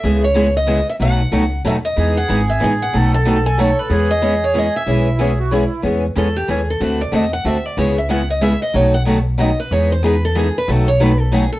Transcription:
X:1
M:3/4
L:1/8
Q:"Swing" 1/4=186
K:E
V:1 name="Steel-string acoustic guitar"
e c2 d2 e | f4 e d- | d f2 e g f- | f a2 g c B- |
B d2 c d e- | e4- e z | z2 A =G ^G A | B =d ^d f e =d |
c e f d e d | c f z2 d B | c =c B A G B | A c B A G A |]
V:2 name="Accordion"
z6 | z6 | G6 | A6 |
G6 | E2 G F E2 | z6 | z6 |
z6 | z6 | z6 | z6 |]
V:3 name="Steel-string acoustic guitar"
[C,G,B,EG] z [C,G,B,EG] z [C,G,B,EG] z | [B,,F,A,DF] z [B,,F,A,DF] z [B,,F,A,DF] z | [E,B,DG] z [E,B,DG] z [E,B,DG] z | [B,,F,A,DF] z [B,,F,A,DF] z [B,,F,A,DF] z |
[E,B,CG] z [E,B,CG] z [E,B,CG] z | [E,B,CG] z [E,B,CG] z [E,B,CG] z | [E,B,CG] z [E,B,CG] z [E,B,CG] z | [=D,A,=CFA] z [D,A,CFA] z [D,A,CFA] z |
[C,G,B,EG] z [C,G,B,EG] z [C,G,B,EG] z | [B,,F,A,DF] z [B,,F,A,DF] z [B,,F,A,DF] z | [E,B,DG] z [E,B,DG] z [E,B,DG] z | [B,,F,A,DF] z [B,,F,A,DF] z [B,,F,A,DF] z |]
V:4 name="Steel-string acoustic guitar"
[C,G,B,EG] z [C,G,B,EG] z [C,G,B,EG] z | [B,,D,F,B,DA] z [B,,D,F,B,DA] z [B,,D,F,B,DA] z | [E,G,B,DG] z [E,G,B,DG] z [E,G,B,DG] z | [B,,D,F,B,DA] z [B,,D,F,B,DA] z [B,,D,F,B,DA] z |
[E,G,CGc] z [E,G,CGc] z [E,G,CGc] z | [E,G,CGc] z [E,G,CGc] z [E,G,CGc] z | [E,G,CGc] z [E,G,CGc] z [E,G,CGc] z | [=D,A,=CFA] z [D,A,CFA] z [D,A,CFA] z |
[C,G,B,EG] z [C,G,B,EG] z [C,G,B,EG] z | [B,,D,F,B,DA] z [B,,D,F,B,DA] z [B,,D,F,B,DA] z | [E,G,B,DG] z [E,G,B,DG] z [E,G,B,DG] z | [B,,D,F,B,DA] z [B,,D,F,B,DA] z [B,,D,F,B,DA] z |]
V:5 name="Upright bass" clef=bass
C,,6 | B,,,2 C,,2 D,,2 | E,,2 G,,,2 A,,,2 | B,,,6 |
E,,6 | B,,,6 | E,,2 E,,2 D,,2 | =D,,2 E,,2 D,,2 |
C,,6 | B,,,6 | E,,6 | B,,,6 |]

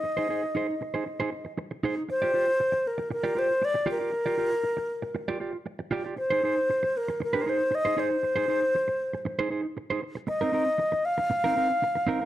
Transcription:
X:1
M:4/4
L:1/16
Q:1/4=117
K:Bbmix
V:1 name="Alto flute"
e12 z4 | c6 B2 B2 c2 d2 B2- | B8- B2 z6 | c6 B2 B2 c2 e2 c2- |
c8- c2 z6 | e6 f8- f2 |]
V:2 name="Clean electric guitar"
z [EAc] [EAc] z [EAc] z2 [EAc] z [EAc] z4 [EAc] z | z [FGd] [FGd] z6 [FGd] [FGd] z3 [FGd] [FGd] | z [FGd] [FGd] z6 [FGd] [FGd] z3 [FGd] [FGd] | z [EAc] [EAc] z6 [EAc] [EAc] z2 [EAc] [EAc] z |
z [EAc] [EAc] z6 [EAc] [EAc] z2 [EAc] z2 | z [CEB] [CEB] z6 [CEB] [CEB] z3 [CEB] B |]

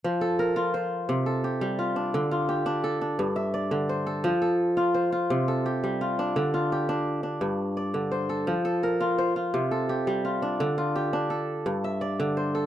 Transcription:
X:1
M:12/8
L:1/8
Q:3/8=114
K:F
V:1 name="Kora"
z A B2 c3 A G2 F D- | D F G2 A D2 e d2 c A- | A A3 c F2 A G2 F D- | D F G3 D2 z d2 c A- |
A A B2 c F2 A G2 F D- | D F G2 A3 e d2 c A |]
V:2 name="Kora" clef=bass
F,2 z F2 z C,2 z G,2 z | D,2 z D2 z G,,2 z D,2 z | F,2 z F2 z C,2 z G,2 z | D,2 z D2 z G,,2 z D,2 z |
F,2 z F2 z C,2 z G,2 z | D,2 z D2 z G,,2 z D,2 z |]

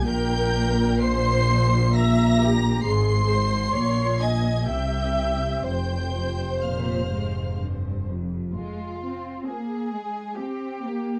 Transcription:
X:1
M:3/4
L:1/8
Q:1/4=65
K:Fm
V:1 name="Violin section"
g'2 c''2 b'2 | c''3 a' g'2 | g'2 f'2 z2 | z2 a2 a2 |]
V:2 name="Violin section"
g2 c'2 b2 | c'3 a g2 | g2 f2 z2 | F2 A2 G2 |]
V:3 name="Viola section"
B2 c2 =e G | A c d e =e2 | c4- c z | z2 [CF]2 [CF]2 |]
V:4 name="Cello section" clef=bass
B,,6 | A,,2 B,,2 C,2 | F,,2 B,, A,, G,, F,, | A, C B, A, C B, |]
V:5 name="Double bass section" clef=bass
B,,,6 | A,,,2 B,,,2 C,,2 | F,,,6 | F,,,2 z4 |]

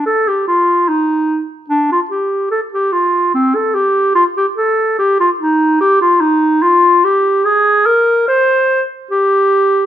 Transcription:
X:1
M:4/4
L:1/16
Q:1/4=73
K:Fmix
V:1 name="Clarinet"
A G F2 E3 z D F G2 A G F2 | C A G2 F G A2 G F E2 G F E2 | [K:Gphr] F2 G2 A2 B2 c3 z G4 |]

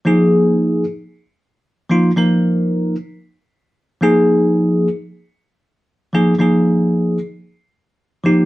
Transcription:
X:1
M:4/4
L:1/8
Q:1/4=114
K:Eb
V:1 name="Tine electric piano"
[F,B,EA]3 z4 [F,B,EF] | [F,B,EB]3 z4 [F,B,EA]- | [F,B,EA]2 z4 z [F,B,EA] | [F,B,EA]3 z4 [F,B,EG] |]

